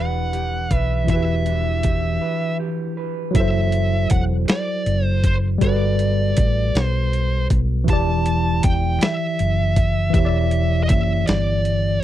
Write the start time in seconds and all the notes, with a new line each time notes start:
Already playing: E1 E3 D4 E4 G4 B4 D5 F#5
0.33 G4, closed hi-hat
0.71 B1 B4, kick, closed hi-hat
0.77 E5
1.05 E3 E4, kick, closed hi-hat
1.09 E1 F#4 B4 E5
1.13 G4 B4
1.46 D4, closed hi-hat
1.83 G4, kick, closed hi-hat
2.22 B4
2.59 G4
2.97 B4
3.31 F#3 E4
3.35 F#1 A4 E5, kick, closed hi-hat
3.40 C5
3.72 closed hi-hat
4.10 E1 F#5, kick, closed hi-hat
4.48 D5, snare, closed hi-hat
4.86 F#1, closed hi-hat
5.06 C5
5.24 C5, kick, closed hi-hat
5.58 G1 G3 F#4, kick, closed hi-hat
5.63 A4 D5
5.67 B4
5.99 closed hi-hat
6.37 A1, kick, closed hi-hat
6.75 B1, snare, closed hi-hat
6.83 C5
7.13 closed hi-hat
7.50 B1, kick, closed hi-hat
7.84 E3 E4, kick, closed hi-hat
7.88 E1 G4 A5
7.93 D5
8.26 closed hi-hat
8.63 E1 G5, kick, closed hi-hat
9.01 E5, snare, closed hi-hat
9.39 F#1, closed hi-hat
9.76 kick, closed hi-hat
10.10 E3 E4
10.14 E1 G4 E5, kick, closed hi-hat
10.19 C#5
10.25 D5
10.51 closed hi-hat
10.83 D#5
10.89 F#1 E5, kick, closed hi-hat
11.27 G1 D5, snare, closed hi-hat
11.65 closed hi-hat